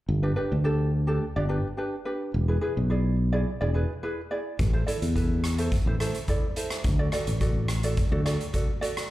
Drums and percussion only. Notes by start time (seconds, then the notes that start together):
4.59 kick, closed hi-hat
4.88 closed hi-hat
5.02 closed hi-hat
5.16 kick, closed hi-hat
5.44 cross-stick, closed hi-hat
5.58 closed hi-hat
5.72 kick, closed hi-hat
6.00 cross-stick, closed hi-hat
6.14 closed hi-hat
6.28 kick, closed hi-hat
6.56 closed hi-hat
6.71 cross-stick, closed hi-hat
6.84 kick, closed hi-hat
7.12 cross-stick, closed hi-hat
7.27 closed hi-hat
7.41 kick, closed hi-hat
7.68 cross-stick, closed hi-hat
7.83 closed hi-hat
7.97 kick, closed hi-hat
8.26 cross-stick, closed hi-hat
8.40 closed hi-hat
8.54 kick, closed hi-hat
8.82 closed hi-hat
8.97 cross-stick, closed hi-hat